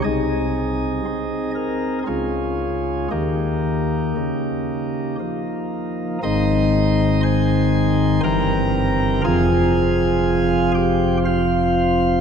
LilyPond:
<<
  \new Staff \with { instrumentName = "Pipe organ" } { \time 3/4 \key aes \major \tempo 4 = 59 << { ees''4. bes'8 aes'4 | g'2 r4 | <ees'' c''' ees'''>4 <c'' aes'' c'''>4 <bes' g'' bes''>4 | <aes' f'' aes''>4. <g' g''>8 <f' c'' f''>4 | } \\ { <ees' aes'>2 <des' f'>4 | <bes ees'>2. | <aes, ees c' ees'>2 <g, e c'>4 | <f, f c' f'>2. | } >> }
  \new Staff \with { instrumentName = "Pipe organ" } { \clef bass \time 3/4 \key aes \major <c, c>4 c'4 <des, des>4 | <ees, ees>4 des4 f4 | aes,,2 g,,4 | f,,2. | }
>>